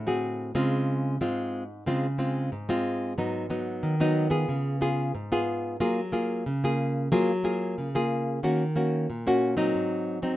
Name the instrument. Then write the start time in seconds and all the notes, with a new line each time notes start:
nylon-string guitar
Already playing: A2
0.07 C4 F#4 G#4
0.55 C#3 G#3 C4 F4
1.21 G#2 G#3 C4 F4
1.86 C#3 G#3 C4 F4
2.18 G#3 C4 F4
2.52 G#2
2.69 G#3 C4 F4
3.18 G#2 F#3 B3 D#4
3.50 F#3 B3 D#4
3.83 D#3
4.00 F#3 B3 D#4
4.30 B3 F4 G#4
4.49 C#3
4.81 B3 F4 G#4
5.15 G#2
5.32 B3 F4 G#4
5.80 F#3 A#3 F4 G#4
6.12 A#3 F4 G#4
6.46 C#3
6.64 A#3 F4 G#4
7.12 F#3 A#3 F4 G#4
7.44 A#3 F4 G#4
7.78 C#3
7.95 A#3 F4 G#4
8.43 D#3 A#3 C#4 F#4
8.76 A#3 C#4 F#4
9.10 A#2
9.27 A#3 C#4 F#4
9.57 F#3 C4 D#4
9.75 G#2
10.22 F#3 C4 D#4